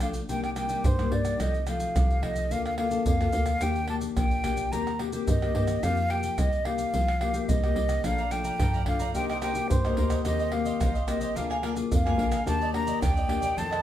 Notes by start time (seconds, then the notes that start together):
Already playing: A#1 F3
0.00 A3 D4 F4 F5, pandeiro, tamborim, maracas
0.14 pandeiro, maracas
0.29 C2 C3 G3 A#3 D#4 G5, pandeiro, maracas, surdo
0.44 G5, pandeiro, tamborim, maracas
0.56 G3 A#3 D#4 G5, pandeiro, tamborim, maracas
0.69 G3 A#3 D#4, pandeiro, maracas
0.84 G2 C5, pandeiro, maracas, surdo
0.98 G3 A#3 D#4, pandeiro, tamborim, maracas
1.12 G2 D5, pandeiro
1.25 pandeiro, tamborim, maracas
1.40 C2 C3 F3 A3 D#4 D#5, pandeiro, tamborim, maracas, surdo
1.54 pandeiro, maracas
1.67 F3 A3 D#4 F5, pandeiro, tamborim, maracas
1.80 pandeiro, maracas
1.95 C2 C3, pandeiro, tamborim, maracas, surdo
2.10 pandeiro, maracas
2.21 F3 A3 D#4 D#5, pandeiro, tamborim, surdo
2.36 pandeiro, maracas
2.50 D2 D3 A#3 F4 A4 F5, pandeiro, maracas, surdo
2.66 F5, pandeiro, tamborim, maracas
2.78 A#3 F4 A4 F5, pandeiro, tamborim
2.91 A#3 F4 A4, pandeiro, maracas
3.06 F2 D3 F5, pandeiro, maracas, surdo
3.21 A#3 F4 A4, pandeiro, tamborim, maracas
3.33 D2 A#3 F4 A4, pandeiro, maracas
3.46 pandeiro, tamborim, maracas
3.61 D#2 D#3 A#3 D4 G4 G5, pandeiro, tamborim, maracas, surdo
3.76 pandeiro, maracas
3.88 A#3 D4 G4 A5, pandeiro, tamborim
4.01 pandeiro, maracas
4.17 A#1 A#2 G5, pandeiro, tamborim, maracas, surdo
4.31 pandeiro, maracas
4.44 A#3 D4 G4, pandeiro, tamborim, maracas, surdo
4.57 pandeiro, maracas
4.72 D#2 D#3 A#3 C4 G4 A#5, pandeiro, maracas, surdo
4.87 pandeiro, tamborim, maracas
4.99 A#3 C4 G4, pandeiro, tamborim
5.13 A#3 C4 G4, pandeiro, maracas
5.27 G2 D#3 D#5, pandeiro, maracas, surdo
5.42 A#3 C4 G4, pandeiro, tamborim, maracas
5.55 G2 A#3 C4 G4, pandeiro
5.67 pandeiro, tamborim, maracas
5.83 F2 F3 A#3 D#4 G4 F5, pandeiro, tamborim, maracas, surdo
5.97 pandeiro, maracas
6.10 A#3 D#4 G4 G5, pandeiro, tamborim
6.23 pandeiro, maracas
6.38 C2 D#5, pandeiro, tamborim, maracas, surdo
6.53 pandeiro, maracas
6.65 A#3 D#4 G4 F5, pandeiro, tamborim
6.78 pandeiro, maracas
6.94 C2 F3, pandeiro, maracas, surdo
7.08 pandeiro, tamborim, maracas
7.21 A#3 D#4 G4, pandeiro, tamborim
7.33 A#3 D#4 G4, pandeiro, maracas
7.49 C2 C3 D#5, pandeiro, maracas, surdo
7.64 A#3 D#4 G4, pandeiro, tamborim, maracas
7.76 C2, pandeiro
7.89 pandeiro, tamborim, maracas
8.04 A#1 A#2 F3 A3 D4 A4 D5 F5 A#5, pandeiro, tamborim, maracas, surdo
8.18 D5 F5 A#5, pandeiro, maracas
8.31 F3 A3 D4 G5, muted cavaquinho stroke, pandeiro, tamborim, maracas
8.45 D5 F5 A#5, pandeiro, maracas
8.59 F2 G2 A4 D5 F5 A#5, pandeiro, tamborim, maracas, surdo
8.74 D5 F5 A#5, pandeiro, maracas
8.86 F3 A3 D4 F5, pandeiro, tamborim, surdo
9.00 D5 F5 A#5, pandeiro, maracas
9.14 C2 C3 A#3 D#4 G4 A#4 C5 D#5 G5, pandeiro, maracas, surdo
9.29 A#4 C5 D#5 G5, pandeiro, tamborim, maracas
9.41 A#3 D#4 G4 A#4 C5 D#5 G5, pandeiro, tamborim, maracas
9.55 A#3 D#4 G4, muted cavaquinho stroke, pandeiro, maracas
9.70 G2 C5, pandeiro, maracas, surdo
9.84 A#3 D#4 G4 A#4 C5 D#5, pandeiro, tamborim, maracas
9.97 D2 A#3 D#4 G4 A#4 C5 D#5, pandeiro
10.10 A#4 C5 D#5, pandeiro, tamborim, maracas
10.24 D#2 D#3 A#3 C4 D#4 G4 C5 D#5, pandeiro, tamborim, maracas, surdo
10.39 G4 C5 D#5, pandeiro, maracas
10.52 A#3 C4 G4 F5, muted cavaquinho stroke, pandeiro, tamborim
10.65 G4 C5 D#5, pandeiro, maracas
10.80 A1 D#4 G4 C5 D#5, pandeiro, tamborim, maracas, surdo
10.94 G4 C5 D#5, pandeiro, maracas
11.07 A#3 C4 G4 D#5, pandeiro, tamborim, maracas
11.20 G4 C5 D#5, pandeiro, maracas
11.35 D2 D3 A#3 D4 F4 G#4 A#4 F5 G#5, pandeiro, maracas, surdo
11.50 A#4 F5 G#5, pandeiro, tamborim, maracas
11.62 A#3 D4 F4 G#4 A#4 F5 G#5, pandeiro, tamborim
11.75 A#3 F4 G#4, muted cavaquinho stroke, pandeiro, maracas
11.91 F2 D3 F5, pandeiro, maracas, surdo
12.05 A#3 F4 G#4 A#4 F5 G#5, pandeiro, tamborim, maracas
12.17 A#1 A#3 D4 F4 G#4 A#4 F5 G#5, pandeiro
12.31 A#4 F5 G#5, pandeiro, tamborim, maracas
12.46 D#2 D#3 A#3 D4 G4 D5 D#5 A5, pandeiro, tamborim, maracas, surdo
12.61 G4 D5 D#5, pandeiro, maracas
12.73 A#3 D4 G4 A#5, muted cavaquinho stroke, pandeiro, tamborim
12.86 G4 D5 D#5, pandeiro, maracas
13.01 D#2 A#2 D4 G4 D5 D#5 G5, pandeiro, tamborim, maracas, surdo
13.15 G4 D5 D#5, pandeiro, maracas
13.28 A#3 D4 G4, pandeiro, tamborim
13.41 G4 D5 D#5, pandeiro, maracas
13.56 F2 D#3 A3 C4 F4 A4 C5 D#5 A5, pandeiro, maracas, surdo
13.71 A4 C5 D#5, pandeiro, tamborim, maracas